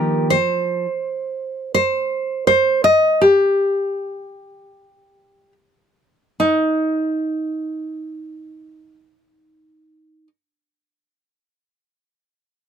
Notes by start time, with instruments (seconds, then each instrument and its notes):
Already playing: steel-string acoustic guitar D#3 F3 A#3 D#4 G4, nylon-string guitar A#4
0.30 nylon-string guitar C5
1.74 nylon-string guitar C5
2.47 nylon-string guitar C5
2.84 nylon-string guitar D#5
3.21 nylon-string guitar G4
6.40 nylon-string guitar D#4